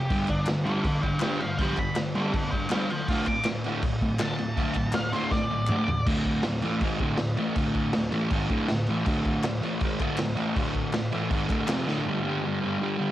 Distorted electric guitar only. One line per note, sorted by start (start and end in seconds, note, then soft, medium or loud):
0.10 0.28 G2 medium
0.10 0.28 D3 medium
0.10 0.29 G3 medium
0.29 0.46 G2 medium
0.29 0.46 D3 medium
0.48 0.64 G2 medium
0.48 0.64 D3 medium
0.65 0.83 G2 medium
0.65 0.84 D3 loud
0.65 0.84 G3 loud
0.85 1.02 G2 medium
0.85 1.02 D3 loud
1.04 1.20 G2 medium
1.04 1.21 D3 medium
1.21 1.39 G2 medium
1.21 1.39 D3 loud
1.21 1.41 G3 loud
1.41 1.58 G2 medium
1.41 1.57 D3 medium
1.60 1.77 G2 medium
1.60 1.78 D3 loud
1.60 1.78 G3 loud
1.79 1.95 G2 medium
1.79 1.95 D3 medium
1.96 2.13 G2 medium
1.96 2.13 D3 medium
2.15 2.32 G2 medium
2.15 2.32 D3 loud
2.15 2.34 G3 loud
2.33 2.50 G2 medium
2.33 2.50 D3 loud
2.52 2.69 G2 medium
2.52 2.70 D3 medium
2.70 2.88 G2 medium
2.70 2.89 D3 loud
2.70 2.89 G3 loud
2.89 3.06 G2 medium
2.89 3.07 D3 medium
3.09 3.26 D2 medium
3.09 3.27 A2 medium
3.09 3.27 D3 loud
3.28 3.44 D2 medium
3.28 3.44 A2 medium
3.46 3.63 D2 medium
3.46 3.63 A2 medium
3.65 3.82 D2 medium
3.65 3.83 A2 medium
3.65 3.83 D3 medium
3.84 4.00 D2 medium
3.84 4.01 A2 medium
4.02 4.19 D2 medium
4.02 4.19 A2 medium
4.20 4.38 D2 loud
4.20 4.38 A2 loud
4.20 4.38 D3 loud
4.39 4.55 D2 medium
4.39 4.56 A2 medium
4.56 4.75 D2 medium
4.56 4.75 A2 medium
4.56 4.75 D3 loud
4.77 4.93 D2 medium
4.77 4.94 A2 medium
4.95 5.12 D2 medium
4.95 5.12 A2 medium
5.13 5.31 D2 medium
5.13 5.32 A2 medium
5.13 5.32 D3 medium
5.33 5.50 D2 medium
5.33 5.50 A2 loud
5.51 5.68 D2 medium
5.51 5.68 A2 medium
5.70 5.87 D2 loud
5.70 5.88 A2 medium
5.70 5.88 D3 loud
5.88 6.05 D2 medium
5.88 6.06 A2 medium
6.06 6.43 D2 loud
6.06 6.44 A2 loud
6.06 6.44 D3 loud
6.44 6.59 D2 medium
6.44 6.60 A2 medium
6.62 6.81 A2 medium
6.62 6.82 E3 loud
6.62 6.82 A3 loud
6.82 7.00 G#2 loud
6.82 7.01 D#3 loud
6.82 7.01 G#3 loud
7.01 7.18 D2 medium
7.01 7.18 A2 medium
7.01 7.20 D3 medium
7.19 7.34 D2 medium
7.19 7.34 A2 medium
7.37 7.55 A2 medium
7.37 7.56 E3 loud
7.37 7.57 A3 loud
7.55 7.92 D2 loud
7.55 7.92 A2 loud
7.55 7.94 D3 medium
7.93 8.09 D2 medium
7.93 8.08 A2 medium
8.11 8.30 A2 medium
8.11 8.31 E3 loud
8.11 8.31 A3 loud
8.31 8.49 G#2 loud
8.31 8.50 D#3 loud
8.31 8.50 G#3 loud
8.49 8.68 D2 loud
8.49 8.69 A2 loud
8.49 8.69 D3 loud
8.70 8.84 D2 medium
8.70 8.84 A2 medium
8.89 9.05 A2 medium
8.89 9.06 E3 medium
8.89 9.07 A3 loud
9.05 9.43 D2 loud
9.05 9.43 A2 loud
9.05 9.44 D3 loud
9.45 9.59 D2 medium
9.45 9.59 A2 medium
9.62 9.80 A2 medium
9.62 9.81 E3 loud
9.62 9.81 A3 medium
9.83 10.00 G#2 loud
9.83 10.01 D#3 loud
9.83 10.01 G#3 loud
10.00 10.18 D2 medium
10.00 10.19 A2 medium
10.00 10.19 D3 loud
10.20 10.34 D2 medium
10.20 10.34 A2 medium
10.35 10.54 A2 medium
10.35 10.55 E3 loud
10.35 10.55 A3 loud
10.55 10.92 D2 medium
10.55 10.93 A2 loud
10.55 10.94 D3 loud
10.94 11.09 D2 medium
10.94 11.09 A2 medium
11.12 11.30 A2 loud
11.12 11.31 E3 medium
11.12 11.31 A3 loud
11.30 11.49 G#2 loud
11.30 11.49 D#3 loud
11.30 11.50 G#3 loud
11.49 11.67 D2 medium
11.49 11.68 A2 medium
11.49 11.68 D3 loud
11.67 11.86 F2 medium
11.67 11.86 C3 loud
11.67 11.87 F3 loud
11.86 12.04 D2 medium
11.86 12.05 A2 loud
11.86 12.06 D3 loud
12.04 12.40 G2 medium
12.04 12.27 D3 medium
12.09 12.22 G3 loud
12.23 12.46 G3 medium
12.28 12.44 D3 medium
12.41 12.65 G2 medium
12.41 12.63 D3 medium
12.47 12.59 G3 loud
12.61 12.80 D3 medium
12.61 12.82 G3 medium
12.66 12.78 G2 medium
12.79 13.01 G2 medium
12.79 12.99 D3 medium
12.83 12.96 G3 loud
12.98 13.12 D3 medium
12.98 13.12 G3 loud
13.03 13.12 G2 medium